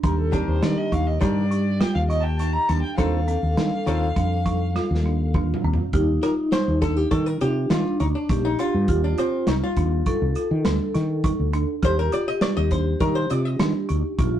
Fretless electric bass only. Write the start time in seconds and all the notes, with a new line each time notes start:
0.04 D#2
0.48 D#2
0.63 D#3
0.92 D#2
1.22 G2
1.95 D#2
2.69 D#2
2.99 D#2
3.43 D#2
3.58 D#3
3.87 D#2
4.17 F2
4.91 D#2
5.64 D#2
5.93 D#2
6.68 D#2
7.12 D#3
7.42 C3
7.71 D#3
8.00 D2
8.30 A#1
8.74 G2
8.89 D#2
9.48 C2
9.77 D#2
10.22 C2
10.51 D#3
10.66 D2
10.95 D#3
11.39 D2
11.83 D#2
12.57 D#2
13.01 D#3
13.31 C3
13.60 D#3
13.90 D2
14.19 A#1